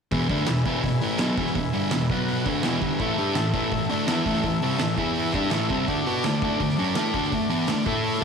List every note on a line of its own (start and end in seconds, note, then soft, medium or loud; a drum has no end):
0.11 0.29 E2 loud
0.11 0.29 B2 loud
0.11 0.29 E3 loud
0.11 2.06 G#4 medium
0.11 2.06 B4 medium
0.11 2.06 E5 medium
0.11 kick loud
0.11 open hi-hat medium
0.29 0.47 D3 medium
0.29 0.47 A3 medium
0.29 0.47 D4 loud
0.29 kick loud
0.29 open hi-hat medium
0.47 0.62 E2 medium
0.47 0.62 B2 medium
0.47 snare loud
0.47 clap medium
0.47 open hi-hat medium
0.66 0.82 E2 medium
0.66 0.83 B2 medium
0.66 0.84 E3 loud
0.66 kick loud
0.66 open hi-hat medium
0.83 0.98 E2 medium
0.83 0.98 B2 medium
0.83 kick medium
0.83 open hi-hat medium
1.01 1.19 A2 medium
1.01 1.19 E3 medium
1.01 1.20 A3 medium
1.01 clap medium
1.01 open hi-hat medium
1.19 1.37 B2 medium
1.19 1.37 F#3 loud
1.19 1.38 B3 loud
1.19 snare loud
1.19 clap medium
1.19 open hi-hat medium
1.37 1.55 E2 medium
1.37 1.55 B2 loud
1.37 1.55 E3 loud
1.37 kick loud
1.37 open hi-hat medium
1.46 snare soft
1.55 1.70 E2 medium
1.55 1.70 B2 medium
1.55 kick medium
1.55 open hi-hat medium
1.73 1.91 G2 medium
1.73 1.91 D3 loud
1.73 1.92 G3 loud
1.73 open hi-hat medium
1.91 2.06 E2 medium
1.91 2.07 B2 medium
1.91 snare loud
1.91 clap medium
1.91 open hi-hat medium
2.10 2.46 B2 medium
2.10 2.46 F#3 loud
2.10 2.46 B3 loud
2.10 2.46 F#4 medium
2.10 2.46 B4 medium
2.10 2.46 F#5 medium
2.10 kick loud
2.10 open hi-hat medium
2.28 open hi-hat medium
2.46 2.63 D3 medium
2.46 2.64 A3 medium
2.46 2.64 D4 loud
2.46 3.01 G#4 medium
2.46 3.00 B4 medium
2.46 3.00 E5 medium
2.46 kick loud
2.46 clap medium
2.46 open hi-hat medium
2.63 2.81 E2 loud
2.63 2.82 B2 loud
2.63 2.82 E3 loud
2.63 2.81 G#5 medium
2.63 snare loud
2.63 clap loud
2.63 open hi-hat medium
2.81 2.99 G2 loud
2.81 2.99 D3 loud
2.81 3.00 G3 loud
2.81 2.99 F#5 medium
2.81 kick loud
2.81 open hi-hat medium
3.00 3.17 A2 medium
3.00 3.17 E3 loud
3.00 3.18 A3 loud
3.00 4.95 E4 medium
3.00 4.95 A4 medium
3.00 4.95 E5 medium
3.00 kick loud
3.00 open hi-hat medium
3.18 3.35 G3 medium
3.18 3.36 D4 medium
3.18 3.36 G4 loud
3.18 open hi-hat medium
3.35 3.50 A2 medium
3.35 3.51 E3 medium
3.35 snare medium
3.35 clap medium
3.35 open hi-hat medium
3.54 3.70 A2 medium
3.54 3.71 E3 medium
3.54 3.72 A3 loud
3.54 kick loud
3.54 open hi-hat medium
3.72 3.86 A2 medium
3.72 3.86 E3 medium
3.72 kick medium
3.72 open hi-hat medium
3.90 4.07 D3 medium
3.90 4.08 A3 medium
3.90 4.08 D4 loud
3.90 clap medium
3.90 open hi-hat medium
4.08 4.25 E3 medium
4.08 4.25 B3 loud
4.08 4.26 E4 loud
4.08 snare loud
4.08 clap loud
4.08 open hi-hat medium
4.26 4.42 A2 medium
4.26 4.43 E3 loud
4.26 4.44 A3 loud
4.26 kick loud
4.26 open hi-hat medium
4.35 snare soft
4.43 4.58 A2 medium
4.43 4.59 E3 medium
4.43 kick medium
4.43 open hi-hat medium
4.62 4.79 C3 loud
4.62 4.80 G3 loud
4.62 4.80 C4 loud
4.62 open hi-hat medium
4.79 4.94 A2 medium
4.79 4.94 E3 medium
4.79 snare medium
4.79 clap medium
4.79 open hi-hat medium
4.97 5.33 E3 loud
4.97 5.33 B3 loud
4.97 5.34 E4 medium
4.97 5.35 E4 medium
4.97 5.35 B4 medium
4.97 5.35 E5 medium
4.97 kick loud
4.97 open hi-hat medium
5.15 open hi-hat medium
5.34 5.51 G3 medium
5.34 5.52 D4 medium
5.34 5.90 E4 medium
5.34 5.52 G4 medium
5.34 5.87 A4 medium
5.34 5.90 E5 medium
5.34 kick loud
5.34 clap medium
5.34 open hi-hat medium
5.51 5.69 A2 medium
5.51 5.69 E3 loud
5.51 5.70 A3 loud
5.51 snare loud
5.51 clap loud
5.51 open hi-hat medium
5.70 5.87 C3 medium
5.70 5.88 G3 loud
5.70 5.88 C4 loud
5.70 kick medium
5.70 open hi-hat medium
5.87 6.05 D3 medium
5.87 6.05 A3 loud
5.87 7.83 D4 medium
5.87 6.06 D4 loud
5.87 7.82 A4 medium
5.87 7.83 D5 medium
5.87 kick loud
5.87 open hi-hat medium
6.06 6.23 B3 medium
6.06 6.24 F#4 loud
6.06 6.24 B4 loud
6.06 open hi-hat medium
6.24 6.39 D3 medium
6.24 6.39 A3 medium
6.24 snare loud
6.24 clap medium
6.24 open hi-hat medium
6.42 6.59 D3 loud
6.42 6.59 A3 medium
6.42 6.60 D4 medium
6.42 kick loud
6.42 open hi-hat medium
6.60 6.75 D3 medium
6.60 6.75 A3 medium
6.60 kick medium
6.60 open hi-hat medium
6.69 snare soft
6.78 6.95 F#3 medium
6.78 6.96 C#4 medium
6.78 6.96 F#4 loud
6.78 clap medium
6.78 open hi-hat medium
6.95 7.13 A3 medium
6.95 7.14 E4 medium
6.95 7.15 A4 loud
6.95 snare loud
6.95 clap medium
6.95 open hi-hat medium
7.14 7.30 D3 loud
7.14 7.31 A3 medium
7.14 7.32 D4 loud
7.14 kick loud
7.14 open hi-hat medium
7.23 snare soft
7.32 7.46 D3 medium
7.32 7.47 A3 medium
7.32 kick medium
7.32 open hi-hat medium
7.49 7.67 E3 medium
7.49 7.68 B3 loud
7.49 7.68 E4 loud
7.49 open hi-hat medium
7.68 7.83 D3 medium
7.68 7.83 A3 medium
7.68 snare medium
7.68 clap medium
7.68 open hi-hat medium
7.86 8.22 A3 loud
7.86 8.22 E4 medium
7.86 8.23 E4 medium
7.86 8.22 A4 loud
7.86 8.19 A4 medium
7.86 8.23 E5 medium
7.86 kick loud
7.86 open hi-hat medium
8.04 open hi-hat medium
8.14 snare soft
8.20 8.24 D4 medium
8.20 8.24 A4 medium
8.20 8.24 D5 medium
8.20 8.24 A5 medium